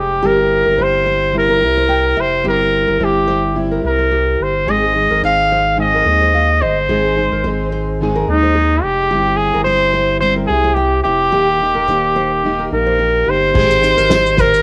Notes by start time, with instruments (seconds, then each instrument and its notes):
Already playing: sub bass F1, steel-string acoustic guitar G#3 C4 D#4 G#4, trumpet G4
0.23 sub bass G1, steel-string acoustic guitar G3 C4 E4 G4, nylon-string guitar G4, trumpet A#4
0.66 sub bass G1, nylon-string guitar A#4
0.77 sub bass G1, steel-string acoustic guitar G3 C4 E4 G4, nylon-string guitar C5
0.83 trumpet C5
1.06 nylon-string guitar C5
1.33 steel-string acoustic guitar G3 C4 E4 G4
1.38 trumpet A#4
1.49 nylon-string guitar A#4
1.59 sub bass C2, steel-string acoustic guitar C4 E4 G4
1.77 nylon-string guitar C5
1.89 nylon-string guitar G5
2.17 sub bass F1, trumpet C5, nylon-string guitar E5
2.44 sub bass G1, steel-string acoustic guitar G3 C4 E4 G4, nylon-string guitar G4
2.49 trumpet A#4
2.87 sub bass G1, nylon-string guitar A#4
2.99 sub bass G1, steel-string acoustic guitar G3 C4 E4 G4, nylon-string guitar C5
3.04 trumpet G4
3.28 nylon-string guitar C5
3.55 steel-string acoustic guitar G3 C4 E4 G4
3.71 nylon-string guitar A#4
3.82 sub bass C2, steel-string acoustic guitar C4 E4 G4
3.86 trumpet A#4
3.99 nylon-string guitar C5
4.11 nylon-string guitar G4
4.40 sub bass G1, trumpet C5
4.65 sub bass G#1, steel-string acoustic guitar G#2 D#3 G#3 C4 D#4 G#4, nylon-string guitar G#4
4.70 trumpet D#5
4.93 steel-string acoustic guitar G#3 C4 D#4 G#4
5.10 sub bass G#1, nylon-string guitar A#4
5.22 sub bass G#1, steel-string acoustic guitar G#3 C4 D#4 G#4, nylon-string guitar C5, trumpet F5
5.52 nylon-string guitar C5
5.77 steel-string acoustic guitar G#2 D#3 G#3 C4 D#4 G#4, trumpet D#5
5.94 nylon-string guitar A#4
6.05 sub bass D#2, steel-string acoustic guitar G#3 C4 D#4 G#4
6.21 nylon-string guitar C5
6.34 nylon-string guitar F5
6.62 sub bass G1, trumpet C5, nylon-string guitar D#5
6.89 sub bass G#1, steel-string acoustic guitar G#2 D#3 G#3 C4 D#4 G#4, nylon-string guitar G#4
7.17 steel-string acoustic guitar G#3 C4 D#4 G#4
7.32 sub bass G#1, nylon-string guitar A#4
7.44 sub bass G#1, steel-string acoustic guitar G#3 C4 D#4, nylon-string guitar C5
7.48 steel-string acoustic guitar G#4
7.72 nylon-string guitar C5
8.01 steel-string acoustic guitar G#2 D#3 G#3 C4 D#4 G#4
8.16 nylon-string guitar A#4
8.27 sub bass D#2, steel-string acoustic guitar G#3 C4 D#4 G#4, trumpet D#4
8.43 nylon-string guitar C5
8.55 nylon-string guitar G#4
8.83 sub bass F1, trumpet G4
9.10 sub bass G1, steel-string acoustic guitar G3 C4 E4 G4, nylon-string guitar G4
9.37 trumpet G#4
9.54 sub bass G1, nylon-string guitar A#4
9.64 sub bass G1, steel-string acoustic guitar G3 C4, trumpet C5, nylon-string guitar C5
9.69 steel-string acoustic guitar G4
9.94 nylon-string guitar C5
10.21 steel-string acoustic guitar G3 C4 E4 G4, trumpet C5
10.36 nylon-string guitar A#4
10.47 sub bass C2, steel-string acoustic guitar G4, trumpet G#4
10.51 steel-string acoustic guitar C4 E4
10.64 nylon-string guitar C5
10.74 trumpet G4, nylon-string guitar G5
11.04 sub bass F1, steel-string acoustic guitar E4 G4, trumpet G4, nylon-string guitar E5
11.08 steel-string acoustic guitar C4
11.32 sub bass D#1, steel-string acoustic guitar D#3 A#3 D#4 G4, nylon-string guitar G4
11.60 steel-string acoustic guitar A#3 D#4 G4
11.75 sub bass D#1, nylon-string guitar A#4
11.88 sub bass D#1, steel-string acoustic guitar D#3 A#3 D#4 G4, nylon-string guitar C5
12.16 nylon-string guitar C5
12.45 steel-string acoustic guitar D#3 A#3 D#4 G4
12.59 nylon-string guitar A#4
12.71 sub bass A#1, steel-string acoustic guitar A#3 D#4 G4, trumpet A#4
12.86 nylon-string guitar C5
12.99 nylon-string guitar G4
13.26 sub bass G1, steel-string acoustic guitar A#3 D#4 G4, trumpet C5
13.54 sub bass G#1, steel-string acoustic guitar G#3 C4 D#4 G4, nylon-string guitar G#4, kick, crash
13.70 tambourine, shaker
13.81 steel-string acoustic guitar C4 D#4 G4, tambourine, shaker
13.97 sub bass G#1, nylon-string guitar A#4, tambourine, shaker
14.10 sub bass G#1, nylon-string guitar C5, snare, tambourine, shaker
14.26 shaker
14.37 trumpet A#4, nylon-string guitar C5, kick, tambourine, shaker
14.54 tambourine, shaker